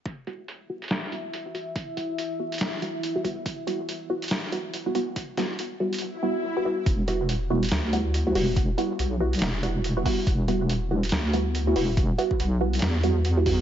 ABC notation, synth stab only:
X:1
M:4/4
L:1/16
Q:"Swing 16ths" 1/4=141
K:Em
V:1 name="Synth stab"
z2 [G,B,EF] z3 [G,B,EF] z3 [G,B,EF]2 z [G,B,EF] [G,B,EF]2 | z2 [G,B,EF] z3 [G,B,EF] z3 [G,B,EF]2 z [G,B,EF] [G,B,EF]2 | z2 [G,B,EF] z3 [G,B,EF] z3 [G,B,EF]2 z [G,B,EF] [G,B,EF]2 | z2 [G,B,EF] z3 [G,B,EF] z3 [G,B,EF]2 z [G,B,EF] [G,B,EF]2 |
z2 [G,B,EF] z3 [G,B,EF] z3 [G,B,EF]2 z [G,B,EF] [G,B,EF]2 | z2 [G,B,EF] z3 [G,B,EF] z3 [G,B,EF]2 z [G,B,EF] [G,B,EF]2 | z2 [G,B,EF] z3 [G,B,EF] z3 [G,B,EF]2 z [G,B,EF] [G,B,EF]2 | z2 [G,B,EF] z3 [G,B,EF] z3 [G,B,EF]2 z [G,B,EF] [G,B,EF]2 |]